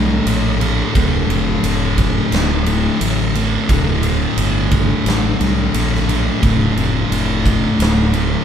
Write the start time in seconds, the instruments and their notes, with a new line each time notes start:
Already playing: fingered electric bass C2, distorted electric guitar D2 A2 D3
0.25 fingered electric bass A#1, distorted electric guitar D2 A2 D3, ride
0.60 distorted electric guitar D2 A2 D3, ride
0.93 fingered electric bass D1, distorted electric guitar D2 A2 D3, kick, ride
1.29 fingered electric bass F1, ride
1.63 fingered electric bass F1, ride
1.98 kick, ride
2.32 fingered electric bass D1, snare, ride
2.64 distorted electric guitar D2 A2 D3, ride
3.00 fingered electric bass A1, distorted electric guitar D2 A2 D3, ride
3.34 distorted electric guitar D2 A2 D3, ride
3.68 fingered electric bass D1, distorted electric guitar D2 A2 D3, kick, ride
4.03 ride
4.37 fingered electric bass G1, ride
4.71 kick, ride
5.05 fingered electric bass A1, snare, ride
5.39 fingered electric bass C2, distorted electric guitar D2 A2 D3, ride
5.73 fingered electric bass A#1, distorted electric guitar D2 A2 D3, ride
5.95 snare
6.08 distorted electric guitar D2 A2 D3, ride
6.41 fingered electric bass D1, distorted electric guitar D2 A2 D3, kick, ride
6.76 fingered electric bass F1, ride
7.10 fingered electric bass F1, ride
7.46 kick, ride
7.79 fingered electric bass D1, snare, ride
8.12 distorted electric guitar D2 A2 D3, ride